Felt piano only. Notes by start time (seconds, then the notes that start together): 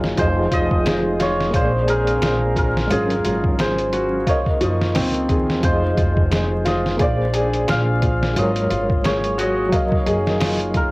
Already playing: F4 G#4 F5
0.18 F4
0.52 F4
0.85 G#4
1.19 F4
1.54 F5
1.88 G#4
2.22 F4
2.56 F4
2.90 F4
3.25 F4
3.59 G#4
3.93 F#4
4.26 F5
4.61 F3
4.95 C4
5.29 G#4
5.63 F4
5.97 F4
6.31 G#4
6.65 F4
7.00 F5
7.33 G#4
7.68 F4
8.02 F4
8.36 F4
8.70 F4
9.04 G#4
9.38 F#4
9.72 F5
10.06 G#4
10.40 F4
10.74 F4